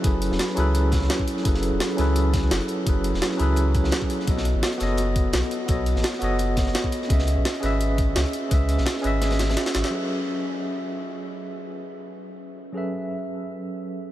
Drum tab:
HH |x-x-x-x-x-x-x-x-|x-x-xxx-x-x-xxx-|x-x-x-x-x-x-x-x-|x-x-xxx-x-x-xxx-|
SD |---ooo----ooo--o|-o--o-o---o-o---|---ooo-----oo--o|-o--o-o-----o---|
BD |o---------o--o--|o---------o-----|o---------o--o--|o---------o-----|

HH |x-x-x-x-x-x-x-x-|x-x-xxx-x-x-xxx-|x-x-x-x-xxxxx-xx|----------------|
SD |---ooo----ooo--o|-o--o-o-----o---|---ooo--oooooooo|----------------|
BD |o---------o--o--|o---------o-----|o---------------|----------------|

HH |----------------|----------------|
SD |----------------|----------------|
BD |----------------|----------------|